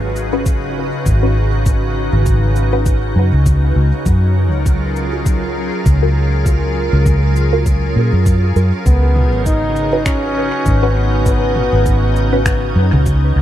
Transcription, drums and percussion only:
0.16 cabasa soft
0.46 kick loud
0.46 cabasa medium
1.06 kick medium
1.06 cabasa soft
1.66 kick loud
1.66 cabasa soft
2.26 kick loud
2.26 cabasa soft
2.56 cabasa soft
2.86 kick loud
2.86 cabasa medium
3.46 kick loud
3.46 cabasa medium
4.06 kick loud
4.06 cabasa soft
4.66 kick loud
4.66 cabasa soft
4.96 cabasa soft
5.26 kick loud
5.26 cabasa medium
5.86 kick loud
5.86 cabasa medium
6.46 kick loud
6.46 cabasa soft
7.06 kick loud
7.06 cabasa soft
7.36 cabasa soft
7.66 kick loud
7.66 cabasa soft
8.26 kick loud
8.26 cabasa soft
8.56 cabasa soft
8.86 kick loud
8.86 cabasa soft
9.16 mid tom medium
9.46 kick medium
9.46 cabasa soft
9.76 cabasa soft
10.06 finger snap medium
10.06 kick loud
10.06 cabasa soft
10.66 kick loud
10.66 cabasa soft
11.26 kick loud
11.26 cabasa soft
11.56 mid tom medium
11.86 kick medium
11.86 cabasa soft
12.16 cabasa soft
12.46 finger snap medium
12.46 kick loud
12.46 cabasa soft
12.93 mid tom medium
13.06 kick loud
13.06 cabasa soft

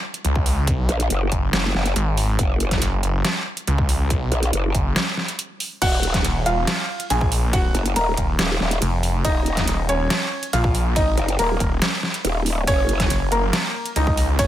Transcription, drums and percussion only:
0.14 closed hi-hat soft
0.25 closed hi-hat medium
0.36 kick loud
0.46 open hi-hat medium
0.67 kick loud
0.67 closed hi-hat medium
0.89 closed hi-hat medium
1.00 closed hi-hat medium
1.10 closed hi-hat medium
1.32 kick medium
1.32 closed hi-hat medium
1.53 snare loud
1.53 closed hi-hat medium
1.75 snare soft
1.86 closed hi-hat soft
1.96 closed hi-hat medium
2.17 open hi-hat medium
2.39 kick loud
2.39 closed hi-hat medium
2.60 closed hi-hat medium
2.71 kick medium
2.71 snare soft
2.71 closed hi-hat medium
2.82 closed hi-hat medium
3.03 closed hi-hat medium
3.25 snare loud
3.25 closed hi-hat medium
3.57 closed hi-hat soft
3.67 closed hi-hat medium
3.78 kick loud
3.89 open hi-hat medium
4.10 kick loud
4.10 closed hi-hat medium
4.32 closed hi-hat medium
4.43 closed hi-hat medium
4.53 closed hi-hat medium
4.75 kick medium
4.75 closed hi-hat medium
4.96 snare loud
4.96 closed hi-hat medium
5.17 snare soft
5.28 closed hi-hat medium
5.39 closed hi-hat medium
5.60 open hi-hat loud
5.82 kick loud
5.82 closed hi-hat medium
5.82 crash medium
5.82 ride medium
6.03 closed hi-hat medium
6.14 kick medium
6.14 snare soft
6.14 closed hi-hat medium
6.25 closed hi-hat medium
6.25 ride soft
6.46 closed hi-hat medium
6.67 snare loud
6.67 closed hi-hat medium
6.67 ride medium
7.00 closed hi-hat medium
7.10 closed hi-hat medium
7.10 ride soft
7.21 kick loud
7.32 open hi-hat loud
7.53 kick loud
7.53 closed hi-hat medium
7.53 ride medium
7.75 closed hi-hat medium
7.86 closed hi-hat medium
7.96 closed hi-hat medium
7.96 ride soft
8.17 kick medium
8.17 closed hi-hat medium
8.39 snare loud
8.39 closed hi-hat medium
8.39 ride medium
8.60 snare soft
8.71 closed hi-hat medium
8.82 closed hi-hat medium
8.82 ride soft
9.03 open hi-hat medium
9.25 kick loud
9.25 closed hi-hat medium
9.25 ride medium
9.46 closed hi-hat medium
9.57 kick medium
9.57 snare soft
9.57 closed hi-hat medium
9.68 closed hi-hat medium
9.68 ride soft
9.89 closed hi-hat medium
10.10 snare loud
10.10 closed hi-hat medium
10.10 ride medium
10.43 closed hi-hat medium
10.53 closed hi-hat medium
10.53 ride soft
10.64 kick loud
10.75 open hi-hat medium
10.96 kick loud
10.96 closed hi-hat medium
10.96 ride medium
11.17 closed hi-hat medium
11.28 closed hi-hat medium
11.39 closed hi-hat medium
11.39 ride soft
11.60 kick medium
11.60 closed hi-hat medium
11.82 snare loud
11.82 closed hi-hat medium
11.82 ride medium
12.03 snare soft
12.14 closed hi-hat medium
12.25 closed hi-hat medium
12.25 ride soft
12.46 open hi-hat medium
12.67 kick loud
12.67 closed hi-hat medium
12.67 ride medium
12.89 closed hi-hat medium
13.00 kick medium
13.00 snare soft
13.00 closed hi-hat medium
13.10 closed hi-hat medium
13.10 ride soft
13.32 closed hi-hat medium
13.53 snare loud
13.53 closed hi-hat medium
13.53 ride medium
13.86 closed hi-hat soft
13.96 closed hi-hat medium
13.96 ride soft
14.07 kick loud
14.17 open hi-hat medium
14.39 kick loud
14.39 closed hi-hat medium
14.39 ride medium

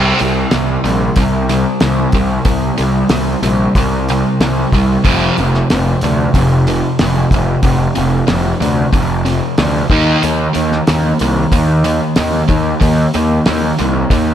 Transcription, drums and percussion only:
0.19 open hi-hat soft
0.51 snare loud
0.51 open hi-hat medium
0.85 open hi-hat soft
1.16 kick medium
1.16 open hi-hat medium
1.49 snare soft
1.49 open hi-hat soft
1.80 snare loud
1.80 open hi-hat medium
2.12 kick medium
2.12 open hi-hat medium
2.45 kick loud
2.45 open hi-hat medium
2.78 open hi-hat soft
3.09 snare loud
3.09 open hi-hat medium
3.43 open hi-hat soft
3.75 kick medium
3.75 open hi-hat medium
4.09 open hi-hat soft
4.41 snare loud
4.41 open hi-hat medium
4.72 kick medium
4.72 open hi-hat soft
5.05 kick loud
5.05 open hi-hat medium
5.38 open hi-hat soft
5.54 snare soft
5.70 snare loud
5.70 open hi-hat medium
6.01 open hi-hat soft
6.34 kick medium
6.34 open hi-hat medium
6.67 open hi-hat soft
6.99 snare loud
6.99 open hi-hat medium
7.31 kick medium
7.31 open hi-hat medium
7.63 kick loud
7.63 open hi-hat medium
7.95 open hi-hat medium
8.28 snare loud
8.28 open hi-hat medium
8.62 open hi-hat soft
8.93 kick medium
8.93 open hi-hat medium
9.26 open hi-hat soft
9.58 snare loud
9.58 open hi-hat medium
9.90 kick loud
9.90 open hi-hat soft
10.23 open hi-hat medium
10.55 open hi-hat soft
10.72 snare soft
10.87 snare loud
10.87 open hi-hat medium
11.19 open hi-hat soft
11.52 kick medium
11.52 open hi-hat medium
11.84 open hi-hat medium
12.16 snare loud
12.16 open hi-hat medium
12.49 kick medium
12.49 open hi-hat soft
12.81 kick loud
12.81 open hi-hat medium
13.14 open hi-hat medium
13.46 snare loud
13.46 open hi-hat medium
13.79 open hi-hat soft
14.10 kick medium
14.10 open hi-hat medium

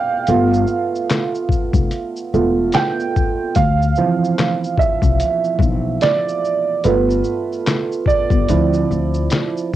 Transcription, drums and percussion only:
0.27 closed hi-hat medium
0.27 shaker medium
0.54 shaker soft
0.67 shaker soft
0.95 shaker medium
1.10 snare loud
1.10 clap loud
1.10 closed hi-hat medium
1.10 shaker medium
1.35 shaker soft
1.49 kick medium
1.49 shaker medium
1.73 kick medium
1.73 shaker medium
1.91 closed hi-hat medium
1.91 shaker medium
2.16 shaker soft
2.34 shaker soft
2.72 snare loud
2.72 clap medium
2.72 closed hi-hat medium
2.72 shaker medium
3.00 shaker soft
3.16 kick medium
3.16 shaker soft
3.55 kick medium
3.55 closed hi-hat medium
3.55 shaker medium
3.82 shaker soft
3.95 shaker soft
4.24 shaker medium
4.39 snare loud
4.39 clap medium
4.39 closed hi-hat medium
4.39 shaker medium
4.64 shaker soft
4.78 kick medium
4.78 shaker soft
5.02 kick medium
5.02 shaker medium
5.20 closed hi-hat medium
5.20 shaker medium
5.44 shaker soft
5.59 kick medium
5.59 shaker soft
6.01 snare loud
6.01 clap medium
6.01 closed hi-hat medium
6.01 shaker medium
6.29 shaker soft
6.45 shaker medium
6.84 closed hi-hat medium
6.84 shaker medium
7.10 shaker soft
7.24 shaker soft
7.52 shaker medium
7.67 snare loud
7.67 clap loud
7.67 closed hi-hat medium
7.67 shaker medium
7.92 shaker soft
8.06 kick medium
8.06 shaker soft
8.30 kick loud
8.30 shaker medium
8.49 closed hi-hat medium
8.49 shaker medium
8.73 shaker soft
8.92 shaker soft
9.14 shaker soft
9.30 snare loud
9.30 clap medium
9.30 closed hi-hat medium
9.30 shaker medium
9.57 shaker soft

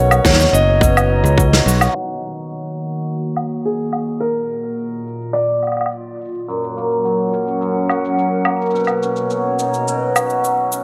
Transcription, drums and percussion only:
0.11 cabasa soft
0.11 low woodblock medium
0.25 kick loud
0.25 snare medium
0.25 cabasa medium
0.29 snare medium
0.32 snare soft
0.36 snare soft
0.40 snare soft
0.40 cabasa soft
0.44 snare soft
0.47 snare soft
0.50 snare soft
0.55 cabasa medium
0.81 kick loud
0.81 cabasa medium
0.97 cabasa soft
0.97 low woodblock medium
1.26 cabasa medium
1.38 kick loud
1.38 cabasa medium
1.53 snare medium
1.53 cabasa soft
1.68 cabasa medium
1.81 cabasa soft
1.81 low woodblock medium
2.10 cabasa soft
2.24 cabasa medium
2.38 cabasa soft
2.53 cabasa soft
2.95 cabasa soft
3.08 cabasa soft
3.36 cabasa medium
3.36 low woodblock medium
3.51 cabasa soft
3.64 cabasa soft
3.93 cabasa medium
3.93 low woodblock medium
4.08 cabasa soft
4.18 cabasa soft
4.23 cabasa medium
4.27 cabasa soft
4.38 cabasa soft
4.50 cabasa medium
4.65 cabasa soft
4.79 cabasa soft
5.07 cabasa medium
5.22 cabasa soft
5.36 cabasa soft
5.63 cabasa medium
5.63 low woodblock soft
5.67 low woodblock soft
5.72 low woodblock soft
5.77 cabasa soft
5.77 low woodblock soft
5.81 low woodblock medium
5.86 low woodblock medium
5.92 cabasa soft
6.21 cabasa medium
6.25 cabasa medium
6.28 cabasa soft
6.31 cabasa soft
6.34 cabasa soft
6.39 cabasa soft
6.43 cabasa soft
6.46 cabasa soft
6.49 cabasa medium
6.64 cabasa soft
6.78 cabasa medium
6.91 cabasa soft
7.05 cabasa medium
7.33 cabasa medium
7.47 cabasa soft
7.62 cabasa medium
7.89 cabasa medium
7.89 low woodblock medium
8.05 cabasa soft
8.19 cabasa medium
8.45 low woodblock medium
8.61 cabasa soft
8.66 cabasa soft
8.70 cabasa soft
8.75 cabasa medium
8.80 cabasa soft
8.84 cabasa soft
8.84 low woodblock medium
8.87 cabasa soft
9.03 cabasa medium
9.16 cabasa soft
9.30 cabasa medium
9.59 cabasa medium
9.74 cabasa soft
9.88 cabasa medium
10.16 cabasa medium
10.16 low woodblock medium
10.30 cabasa soft
10.44 cabasa soft
10.72 cabasa medium

